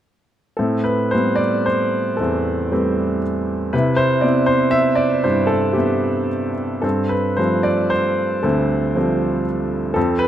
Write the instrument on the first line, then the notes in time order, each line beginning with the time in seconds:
grand piano
0.57 A2 C4 A4
0.84 B4
1.11 G3 A3 B3 C5
1.15 C4
1.36 D5
1.66 C5
2.17 E2 A4
2.21 C4
2.72 G3 A3 C4 B4
3.73 C3 E4 B4
3.96 C5
4.21 B3 C4 E4 D5
4.46 C5
4.71 E5
4.95 D5
5.24 G2 E4 C5
5.47 A4
5.73 B3 C4 E4 G4
6.82 G2 C4 A4
7.09 B4
7.37 F3 G3 A3 C4 C5
7.63 D5
7.90 C5
8.43 D2 C4 A4
8.95 F3 G3 A3 C4
9.94 F2 C4 A4
10.19 B4